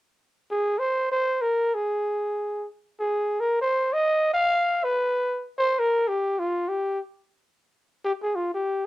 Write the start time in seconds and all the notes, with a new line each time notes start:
0.51 G#4
0.79 C5
1.11 C5
1.41 A#4
1.74 G#4
3.00 G#4
3.40 A#4
3.61 C5
3.93 D#5
4.34 F5
4.84 B4
5.58 C5
5.79 A#4
6.08 G4
6.39 F4
6.69 G4
8.05 G4
8.23 G#4
8.35 F4
8.54 G4